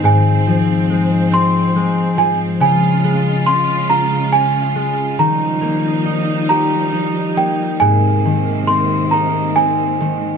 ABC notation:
X:1
M:6/8
L:1/8
Q:3/8=46
K:Ab
V:1 name="Celesta"
a2 z c'2 a | a2 c' b a2 | b2 z b2 g | a2 c' b a2 |]
V:2 name="Harp"
A,, F, A, C A, F, | D, A, D F D A, | E, B, E G E B, | A,, E, C E C E, |]
V:3 name="String section" clef=bass
[A,,F,C]6 | [D,A,F]6 | [F,G,E]6 | [C,A,B,]6 |]